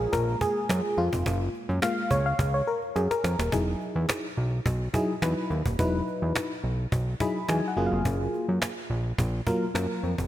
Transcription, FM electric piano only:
0.00 1.78 G#3 medium
0.00 1.79 A#3 medium
0.00 0.97 F4 medium
0.00 0.14 G#4 medium
0.13 0.39 A#4 loud
0.41 1.00 G#4 medium
0.98 1.50 F4 medium
1.82 2.21 G#3 medium
1.82 2.21 A#3 medium
1.82 2.21 F4 medium
1.82 2.12 F5 loud
2.11 2.26 C#5 loud
2.26 2.55 F5 loud
2.54 2.68 C#5 medium
2.67 2.80 A#4 medium
2.96 3.11 G#4 medium
3.11 3.50 A#4 medium
3.52 4.25 F#3 medium
3.52 4.25 D#4 medium
3.52 4.26 E4 medium
3.52 4.26 G#4 medium
4.94 5.12 F#3 medium
4.94 5.13 D#4 medium
4.94 5.13 E4 medium
4.94 5.13 G#4 loud
5.22 5.59 F#3 medium
5.22 5.59 D#4 medium
5.22 5.59 E4 medium
5.22 5.59 B4 medium
5.79 6.52 F#3 medium
5.79 6.52 D#4 medium
5.79 6.52 E4 medium
5.79 6.52 B4 loud
7.20 7.39 F#3 medium
7.20 7.39 D#4 medium
7.20 7.39 E4 medium
7.20 7.40 G#4 loud
7.20 7.47 B5 medium
7.48 7.75 F#3 medium
7.48 7.77 D#4 medium
7.48 7.77 E4 medium
7.48 7.76 G#4 medium
7.48 7.66 G#5 medium
7.68 7.85 F#5 medium
7.77 8.68 F#3 loud
7.77 8.68 A#3 medium
7.77 8.68 F4 medium
7.77 8.68 G#4 loud
7.86 8.04 F5 medium
9.47 9.65 F#3 medium
9.47 9.65 A#3 medium
9.47 9.66 F4 medium
9.47 9.66 A#4 loud
9.74 10.11 F#3 medium
9.74 10.12 A#3 medium
9.74 10.12 F4 medium
9.74 10.12 A#4 medium

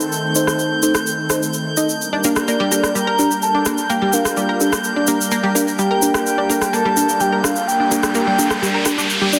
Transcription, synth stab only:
0.35 0.80 D#4 medium
0.35 0.80 A4 medium
0.35 0.80 C5 loud
0.83 0.93 D#4 medium
0.83 0.93 A4 medium
0.83 0.93 C5 medium
1.30 1.41 D#4 medium
1.30 1.41 A4 medium
1.30 1.41 C5 medium
1.77 1.88 D#4 loud
1.77 1.88 A4 medium
1.77 1.88 D#5 loud
2.24 2.69 D4 medium
2.24 2.69 G4 medium
2.24 2.69 A#4 loud
2.72 2.82 D4 medium
2.72 2.82 G4 medium
2.72 2.82 A4 medium
3.19 3.30 D4 medium
3.19 3.30 G4 medium
3.19 3.30 A#4 loud
3.66 3.77 D4 medium
3.66 3.77 G4 medium
3.66 3.77 A#4 medium
4.13 4.58 D4 medium
4.13 4.58 G4 medium
4.13 4.58 A#4 loud
4.61 4.71 D4 medium
4.61 4.71 G4 medium
4.61 4.71 A4 medium
5.08 5.19 D4 loud
5.08 5.19 G4 medium
5.08 5.19 A#4 loud
5.55 5.66 D4 medium
5.55 5.66 G4 medium
5.55 5.66 A#4 loud
6.02 6.47 D4 medium
6.02 6.47 G4 medium
6.02 6.47 A#4 loud
6.50 6.60 D4 medium
6.50 6.60 G4 medium
6.50 6.60 A4 medium
6.97 7.08 D4 medium
6.97 7.08 G4 medium
6.97 7.08 A#4 loud
7.44 7.55 D4 medium
7.44 7.55 G4 medium
7.44 7.55 A#4 loud
7.91 8.36 D4 medium
7.91 8.36 G4 medium
7.91 8.36 A#4 loud
8.38 8.49 D4 medium
8.38 8.49 G4 medium
8.38 8.49 A4 medium
8.86 8.97 D4 medium
8.86 8.97 G4 medium
8.86 8.97 A#4 medium
9.33 9.39 D4 loud
9.33 9.39 G4 medium
9.33 9.39 D5 loud

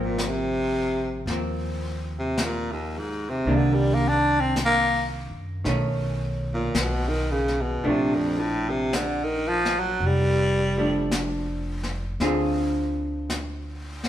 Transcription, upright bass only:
0.00 1.24 G#1 medium
1.26 3.42 D#2 medium
3.45 5.26 C2 medium
5.30 5.62 F#2 medium
5.64 6.70 B1 medium
6.74 7.79 B1 medium
7.84 9.97 A#1 medium
10.00 12.15 F1 medium
12.20 14.09 D2 medium

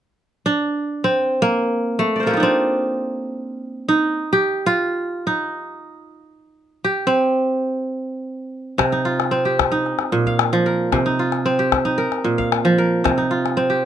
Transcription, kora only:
0.46 2.14 D4 medium
1.04 2.42 C4 medium
1.42 2.05 A#3 medium
1.99 2.29 A3 medium
2.16 2.43 D5 soft
2.20 3.50 A#4 soft
2.20 3.38 C5 soft
2.26 4.20 A#3 medium
2.26 3.58 A4 soft
2.31 3.85 F4 soft
2.31 3.72 G4 soft
2.37 3.94 D4 medium
2.37 3.88 D#4 soft
2.43 4.23 C4 medium
3.88 5.26 D#4 medium
4.33 5.74 G4 medium
4.66 6.18 F4 medium
5.27 6.89 D#4 medium
6.84 8.26 G4 medium
7.07 8.87 C4 medium
8.78 9.91 C3 medium
8.92 9.71 D#4 medium
9.05 10.56 F4 medium
9.31 11.11 C4 medium
9.45 10.86 G4 medium
9.72 11.05 D#4 medium
10.12 10.97 A#2 medium
10.27 11.27 F5 medium
10.53 10.97 F3 medium
10.66 11.93 A#4 medium
10.92 12.03 C3 medium
11.06 11.85 D#4 medium
11.19 12.71 F4 medium
11.46 13.26 C4 medium
11.59 13.00 G4 medium
11.85 13.17 D#4 medium
11.98 12.78 A#4 medium
12.24 13.10 A#2 medium
12.38 13.38 F5 medium
12.65 13.10 F3 medium
12.78 13.85 A#4 medium
13.04 13.85 C3 medium
13.18 13.85 D#4 medium
13.31 13.85 F4 medium
13.57 13.85 C4 medium
13.70 13.85 G4 medium

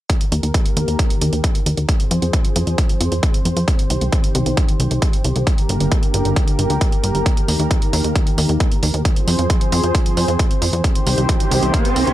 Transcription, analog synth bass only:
0.32 0.41 D#2 medium
0.43 0.52 D#2 medium
0.77 0.85 D#2 medium
0.88 0.97 D#2 medium
1.21 1.30 D#2 medium
1.33 1.41 D#2 medium
1.66 1.75 D#2 medium
1.77 1.86 D#2 medium
2.11 2.20 F2 medium
2.22 2.31 F2 medium
2.56 2.65 F2 medium
2.67 2.76 F2 medium
3.00 3.09 F2 medium
3.12 3.21 F2 medium
3.45 3.54 F2 medium
3.56 3.65 F2 medium
3.90 3.99 C2 medium
4.01 4.10 C2 medium
4.35 4.44 C2 medium
4.46 4.55 C2 medium
4.80 4.88 C2 medium
4.91 5.00 C2 medium
5.24 5.33 C2 medium
5.36 5.45 C2 medium
5.69 5.78 G1 medium
5.80 5.89 G1 medium
6.14 6.23 G1 medium
6.25 6.34 G1 medium
6.59 6.68 G1 medium
6.70 6.79 D2 medium
7.03 7.12 G1 medium
7.15 7.24 G1 medium
7.48 7.57 D#2 medium
7.59 7.68 D#2 medium
7.93 8.02 D#2 medium
8.04 8.13 D#2 medium
8.38 8.47 D#2 medium
8.49 8.58 D#2 medium
8.83 8.92 D#2 medium
8.94 9.03 D#2 medium
9.27 9.36 F2 medium
9.39 9.48 F2 medium
9.72 9.81 F2 loud
9.83 9.92 F2 medium
10.17 10.26 F2 medium
10.28 10.37 F2 medium
10.62 10.71 F2 medium
10.73 10.82 F2 medium
11.06 11.15 C2 medium
11.18 11.27 C2 medium
11.51 11.60 C2 medium
11.63 11.71 C2 medium
11.96 12.05 C2 medium
12.07 12.13 C2 medium

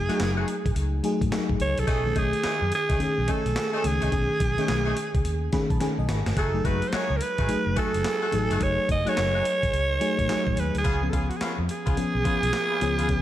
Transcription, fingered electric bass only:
0.20 0.43 F#1 medium
0.66 0.74 A1 medium
0.76 0.99 C#2 loud
1.21 1.30 A1 medium
1.50 1.58 A1 medium
1.60 1.75 C#2 medium
1.78 1.87 C2 medium
1.88 2.11 B1 loud
2.16 2.31 B1 medium
2.45 muted fingered electric bass stroke soft
2.62 2.70 F#2 medium
2.90 2.98 C#2 medium
3.18 3.27 B1 medium
3.46 3.55 B1 medium
3.84 3.99 C#2 medium
4.03 4.11 C2 loud
4.13 4.27 B1 loud
4.40 4.55 B1 medium
4.69 4.92 B1 medium
5.15 5.23 C#2 medium
5.25 5.48 D#2 medium
5.70 5.79 B1 medium
5.98 6.07 B1 medium
6.09 6.23 G#1 medium
6.26 6.35 G1 medium
6.37 6.60 F#1 loud
6.65 6.79 F#1 medium
6.93 muted fingered electric bass stroke soft
7.10 7.19 C#2 medium
7.39 7.47 A1 medium
7.66 7.75 F#1 medium
7.95 8.03 F#1 medium
8.33 8.48 A1 medium
8.51 8.60 G1 medium
8.89 9.04 F#1 medium
9.18 9.41 F#1 medium
9.63 9.72 A1 medium
9.73 9.97 C#2 loud
10.19 10.27 A1 medium
10.47 10.56 A1 medium
10.57 10.72 D#2 loud
10.75 10.83 D2 medium
10.85 11.09 C#2 loud
11.13 11.28 C#2 medium
11.41 muted fingered electric bass stroke soft
11.58 11.67 F2 medium
11.87 11.96 C#2 medium
12.15 12.24 B1 medium
12.43 12.52 B1 medium
12.82 12.96 C#2 medium
12.99 13.08 D2 medium
13.09 13.22 C#2 loud

